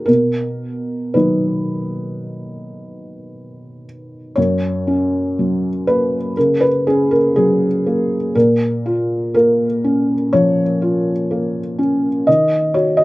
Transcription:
0, 0, Header, 1, 2, 480
1, 0, Start_track
1, 0, Key_signature, 6, "major"
1, 0, Tempo, 1073345
1, 34, Time_signature, 4, 2, 24, 8
1, 1953, Tempo, 991736
1, 4833, Tempo, 972447
1, 6178, End_track
2, 0, Start_track
2, 0, Title_t, "Felt piano"
2, 0, Program_c, 0, 0
2, 0, Control_c, 0, 64, 127
2, 0, Note_on_c, 0, 70, 59
2, 25, Note_off_c, 0, 70, 0
2, 25, Note_on_c, 0, 70, 62
2, 34, Note_on_c, 0, 47, 34
2, 42, Control_c, 0, 64, 0
2, 135, Control_c, 0, 64, 127
2, 503, Note_off_c, 0, 47, 0
2, 510, Note_on_c, 0, 71, 45
2, 513, Note_off_c, 0, 70, 0
2, 513, Note_on_c, 0, 51, 25
2, 519, Note_on_c, 0, 54, 26
2, 519, Note_on_c, 0, 63, 27
2, 1716, Note_off_c, 0, 71, 0
2, 1933, Note_off_c, 0, 51, 0
2, 1936, Note_off_c, 0, 54, 0
2, 1936, Note_off_c, 0, 63, 0
2, 1948, Note_on_c, 0, 73, 61
2, 1957, Note_on_c, 0, 42, 36
2, 1962, Control_c, 0, 64, 0
2, 2049, Control_c, 0, 64, 127
2, 2198, Note_on_c, 0, 61, 31
2, 2448, Note_on_c, 0, 54, 30
2, 2583, Note_off_c, 0, 61, 0
2, 2675, Note_off_c, 0, 73, 0
2, 2682, Note_on_c, 0, 71, 61
2, 2686, Note_on_c, 0, 58, 30
2, 2824, Note_off_c, 0, 54, 0
2, 2898, Note_off_c, 0, 42, 0
2, 2918, Note_off_c, 0, 71, 0
2, 2922, Note_on_c, 0, 70, 56
2, 2923, Control_c, 0, 64, 0
2, 2928, Note_on_c, 0, 49, 30
2, 2997, Control_c, 0, 64, 127
2, 3037, Note_on_c, 0, 71, 59
2, 3039, Note_off_c, 0, 70, 0
2, 3063, Note_off_c, 0, 58, 0
2, 3156, Note_off_c, 0, 71, 0
2, 3164, Note_on_c, 0, 68, 55
2, 3170, Note_on_c, 0, 61, 35
2, 3279, Note_off_c, 0, 68, 0
2, 3281, Note_on_c, 0, 70, 56
2, 3305, Note_off_c, 0, 49, 0
2, 3398, Note_off_c, 0, 70, 0
2, 3401, Note_on_c, 0, 68, 61
2, 3408, Note_on_c, 0, 54, 33
2, 3546, Note_off_c, 0, 61, 0
2, 3646, Note_on_c, 0, 58, 36
2, 3787, Note_off_c, 0, 54, 0
2, 3880, Note_off_c, 0, 68, 0
2, 3882, Note_off_c, 0, 58, 0
2, 3882, Note_on_c, 0, 70, 64
2, 3883, Note_on_c, 0, 46, 42
2, 3886, Control_c, 0, 64, 0
2, 3973, Control_c, 0, 64, 127
2, 4126, Note_on_c, 0, 65, 37
2, 4355, Note_off_c, 0, 70, 0
2, 4362, Note_on_c, 0, 70, 70
2, 4368, Note_on_c, 0, 58, 38
2, 4504, Note_off_c, 0, 65, 0
2, 4604, Note_on_c, 0, 61, 38
2, 4745, Note_off_c, 0, 58, 0
2, 4818, Note_off_c, 0, 46, 0
2, 4837, Note_on_c, 0, 73, 70
2, 4838, Note_off_c, 0, 70, 0
2, 4842, Note_on_c, 0, 53, 36
2, 4985, Note_off_c, 0, 61, 0
2, 5080, Note_on_c, 0, 65, 40
2, 5226, Note_off_c, 0, 53, 0
2, 5322, Note_on_c, 0, 58, 37
2, 5464, Note_off_c, 0, 65, 0
2, 5558, Note_on_c, 0, 61, 38
2, 5559, Note_off_c, 0, 73, 0
2, 5703, Note_off_c, 0, 58, 0
2, 5796, Note_off_c, 0, 61, 0
2, 5796, Note_on_c, 0, 75, 64
2, 5803, Note_on_c, 0, 51, 40
2, 5805, Control_c, 0, 64, 0
2, 5891, Control_c, 0, 64, 127
2, 6029, Note_on_c, 0, 66, 33
2, 6030, Note_on_c, 0, 73, 61
2, 6035, Note_off_c, 0, 75, 0
2, 6142, Note_on_c, 0, 75, 64
2, 6152, Note_off_c, 0, 73, 0
2, 6178, Note_off_c, 0, 51, 0
2, 6178, Note_off_c, 0, 66, 0
2, 6178, Note_off_c, 0, 75, 0
2, 6178, End_track
0, 0, End_of_file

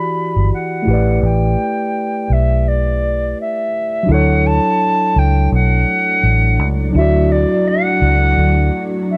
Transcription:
0, 0, Header, 1, 5, 480
1, 0, Start_track
1, 0, Key_signature, 2, "major"
1, 0, Tempo, 714286
1, 823, Time_signature, 4, 2, 24, 8
1, 6163, End_track
2, 0, Start_track
2, 0, Title_t, "Flute"
2, 0, Program_c, 0, 73
2, 0, Note_on_c, 0, 83, 101
2, 350, Note_off_c, 0, 83, 0
2, 361, Note_on_c, 0, 78, 80
2, 805, Note_off_c, 0, 78, 0
2, 833, Note_on_c, 0, 79, 89
2, 1561, Note_on_c, 0, 76, 85
2, 1571, Note_off_c, 0, 79, 0
2, 1798, Note_on_c, 0, 74, 82
2, 1808, Note_off_c, 0, 76, 0
2, 2271, Note_off_c, 0, 74, 0
2, 2289, Note_on_c, 0, 76, 84
2, 2765, Note_on_c, 0, 78, 100
2, 2775, Note_off_c, 0, 76, 0
2, 2999, Note_on_c, 0, 81, 116
2, 3009, Note_off_c, 0, 78, 0
2, 3483, Note_on_c, 0, 79, 99
2, 3493, Note_off_c, 0, 81, 0
2, 3713, Note_off_c, 0, 79, 0
2, 3723, Note_on_c, 0, 78, 111
2, 4485, Note_off_c, 0, 78, 0
2, 4679, Note_on_c, 0, 76, 96
2, 4915, Note_on_c, 0, 74, 88
2, 4925, Note_off_c, 0, 76, 0
2, 5157, Note_on_c, 0, 78, 105
2, 5167, Note_off_c, 0, 74, 0
2, 5937, Note_off_c, 0, 78, 0
2, 6118, Note_on_c, 0, 76, 91
2, 6163, Note_off_c, 0, 76, 0
2, 6163, End_track
3, 0, Start_track
3, 0, Title_t, "Tine electric piano"
3, 0, Program_c, 1, 4
3, 0, Control_c, 1, 64, 127
3, 0, Note_on_c, 1, 52, 72
3, 0, Note_on_c, 1, 64, 64
3, 0, Note_on_c, 1, 66, 71
3, 0, Note_on_c, 1, 67, 72
3, 0, Note_on_c, 1, 74, 78
3, 539, Note_off_c, 1, 52, 0
3, 548, Note_off_c, 1, 64, 0
3, 555, Note_on_c, 1, 57, 67
3, 558, Note_off_c, 1, 66, 0
3, 568, Note_off_c, 1, 67, 0
3, 573, Note_on_c, 1, 64, 56
3, 576, Note_off_c, 1, 74, 0
3, 591, Note_on_c, 1, 67, 58
3, 592, Control_c, 1, 64, 0
3, 609, Note_on_c, 1, 71, 53
3, 628, Note_on_c, 1, 74, 65
3, 707, Control_c, 1, 64, 127
3, 2462, Note_off_c, 1, 57, 0
3, 2472, Note_off_c, 1, 64, 0
3, 2480, Note_off_c, 1, 67, 0
3, 2489, Note_off_c, 1, 71, 0
3, 2499, Note_off_c, 1, 74, 0
3, 2709, Note_on_c, 1, 54, 66
3, 2728, Note_on_c, 1, 62, 61
3, 2745, Note_on_c, 1, 64, 61
3, 2752, Control_c, 1, 64, 0
3, 2765, Note_on_c, 1, 69, 58
3, 2782, Note_on_c, 1, 73, 77
3, 2888, Control_c, 1, 64, 127
3, 4619, Note_off_c, 1, 54, 0
3, 4629, Note_off_c, 1, 62, 0
3, 4638, Note_off_c, 1, 64, 0
3, 4639, Note_on_c, 1, 54, 64
3, 4647, Note_off_c, 1, 69, 0
3, 4656, Note_off_c, 1, 73, 0
3, 4657, Note_on_c, 1, 62, 57
3, 4675, Note_on_c, 1, 64, 59
3, 4692, Note_on_c, 1, 66, 66
3, 4711, Note_on_c, 1, 74, 71
3, 6163, Note_off_c, 1, 54, 0
3, 6163, Note_off_c, 1, 62, 0
3, 6163, Note_off_c, 1, 64, 0
3, 6163, Note_off_c, 1, 66, 0
3, 6163, Note_off_c, 1, 74, 0
3, 6163, End_track
4, 0, Start_track
4, 0, Title_t, "Ambient pad"
4, 0, Program_c, 2, 92
4, 2739, Note_on_c, 2, 54, 84
4, 2741, Note_on_c, 2, 57, 73
4, 2743, Note_on_c, 2, 62, 74
4, 6163, Note_off_c, 2, 54, 0
4, 6163, Note_off_c, 2, 57, 0
4, 6163, Note_off_c, 2, 62, 0
4, 6163, End_track
5, 0, Start_track
5, 0, Title_t, "Fingered electric bass"
5, 0, Program_c, 3, 33
5, 243, Note_on_c, 3, 31, 69
5, 334, Note_off_c, 3, 31, 0
5, 586, Note_on_c, 3, 33, 86
5, 798, Note_off_c, 3, 33, 0
5, 827, Note_on_c, 3, 33, 108
5, 1038, Note_off_c, 3, 33, 0
5, 1544, Note_on_c, 3, 35, 77
5, 2237, Note_off_c, 3, 35, 0
5, 2746, Note_on_c, 3, 38, 108
5, 3079, Note_off_c, 3, 38, 0
5, 3468, Note_on_c, 3, 37, 95
5, 3679, Note_off_c, 3, 37, 0
5, 3711, Note_on_c, 3, 35, 95
5, 3921, Note_off_c, 3, 35, 0
5, 4189, Note_on_c, 3, 33, 86
5, 4430, Note_off_c, 3, 33, 0
5, 4430, Note_on_c, 3, 37, 83
5, 4640, Note_off_c, 3, 37, 0
5, 4669, Note_on_c, 3, 38, 107
5, 5000, Note_off_c, 3, 38, 0
5, 5386, Note_on_c, 3, 37, 88
5, 5598, Note_off_c, 3, 37, 0
5, 5626, Note_on_c, 3, 38, 100
5, 5838, Note_off_c, 3, 38, 0
5, 6163, End_track
0, 0, End_of_file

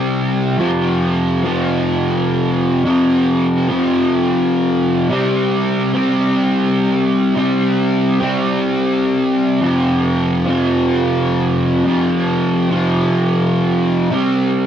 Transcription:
0, 0, Header, 1, 2, 480
1, 0, Start_track
1, 0, Tempo, 564440
1, 501, Time_signature, 4, 2, 24, 8
1, 12472, End_track
2, 0, Start_track
2, 0, Title_t, "Distorted electric guitar"
2, 0, Program_c, 0, 30
2, 0, Note_on_c, 0, 48, 64
2, 0, Note_on_c, 0, 55, 63
2, 0, Note_on_c, 0, 60, 69
2, 489, Note_off_c, 0, 55, 0
2, 490, Note_on_c, 0, 41, 94
2, 494, Note_off_c, 0, 48, 0
2, 508, Note_on_c, 0, 48, 94
2, 515, Note_on_c, 0, 53, 102
2, 1210, Note_off_c, 0, 48, 0
2, 1213, Note_off_c, 0, 53, 0
2, 1216, Note_on_c, 0, 53, 74
2, 1230, Note_on_c, 0, 48, 63
2, 1238, Note_off_c, 0, 41, 0
2, 1241, Note_on_c, 0, 41, 66
2, 2268, Note_off_c, 0, 60, 0
2, 2405, Note_off_c, 0, 41, 0
2, 2405, Note_off_c, 0, 53, 0
2, 2411, Note_off_c, 0, 48, 0
2, 2415, Note_on_c, 0, 41, 89
2, 2428, Note_on_c, 0, 48, 92
2, 2441, Note_on_c, 0, 53, 105
2, 3122, Note_off_c, 0, 53, 0
2, 3124, Note_off_c, 0, 41, 0
2, 3130, Note_off_c, 0, 48, 0
2, 3132, Note_on_c, 0, 53, 74
2, 3150, Note_on_c, 0, 48, 60
2, 3161, Note_on_c, 0, 41, 62
2, 4322, Note_off_c, 0, 53, 0
2, 4325, Note_off_c, 0, 48, 0
2, 4335, Note_on_c, 0, 48, 80
2, 4336, Note_off_c, 0, 41, 0
2, 4350, Note_on_c, 0, 55, 85
2, 4363, Note_on_c, 0, 60, 85
2, 5046, Note_off_c, 0, 60, 0
2, 5050, Note_on_c, 0, 60, 73
2, 5062, Note_off_c, 0, 55, 0
2, 5065, Note_on_c, 0, 55, 60
2, 5076, Note_off_c, 0, 48, 0
2, 5079, Note_on_c, 0, 48, 62
2, 6243, Note_off_c, 0, 48, 0
2, 6249, Note_off_c, 0, 55, 0
2, 6253, Note_on_c, 0, 48, 85
2, 6267, Note_on_c, 0, 55, 99
2, 6278, Note_off_c, 0, 60, 0
2, 6282, Note_on_c, 0, 60, 99
2, 6963, Note_off_c, 0, 48, 0
2, 6969, Note_off_c, 0, 60, 0
2, 6970, Note_off_c, 0, 55, 0
2, 6973, Note_on_c, 0, 60, 64
2, 6992, Note_on_c, 0, 55, 68
2, 6997, Note_on_c, 0, 48, 61
2, 8172, Note_off_c, 0, 55, 0
2, 8175, Note_off_c, 0, 48, 0
2, 8175, Note_on_c, 0, 41, 90
2, 8187, Note_on_c, 0, 48, 96
2, 8197, Note_on_c, 0, 53, 102
2, 8890, Note_off_c, 0, 48, 0
2, 8890, Note_off_c, 0, 53, 0
2, 8894, Note_on_c, 0, 53, 74
2, 8908, Note_on_c, 0, 48, 63
2, 8918, Note_off_c, 0, 41, 0
2, 8921, Note_on_c, 0, 41, 68
2, 9949, Note_off_c, 0, 60, 0
2, 10076, Note_off_c, 0, 41, 0
2, 10083, Note_off_c, 0, 53, 0
2, 10086, Note_on_c, 0, 41, 83
2, 10090, Note_off_c, 0, 48, 0
2, 10099, Note_on_c, 0, 48, 96
2, 10110, Note_on_c, 0, 53, 96
2, 10797, Note_off_c, 0, 53, 0
2, 10799, Note_off_c, 0, 41, 0
2, 10806, Note_off_c, 0, 48, 0
2, 10808, Note_on_c, 0, 53, 69
2, 10823, Note_on_c, 0, 48, 61
2, 10838, Note_on_c, 0, 41, 54
2, 11986, Note_off_c, 0, 48, 0
2, 11997, Note_on_c, 0, 48, 108
2, 11998, Note_off_c, 0, 53, 0
2, 12013, Note_off_c, 0, 41, 0
2, 12015, Note_on_c, 0, 55, 113
2, 12029, Note_on_c, 0, 60, 102
2, 12472, Note_off_c, 0, 48, 0
2, 12472, Note_off_c, 0, 55, 0
2, 12472, Note_off_c, 0, 60, 0
2, 12472, End_track
0, 0, End_of_file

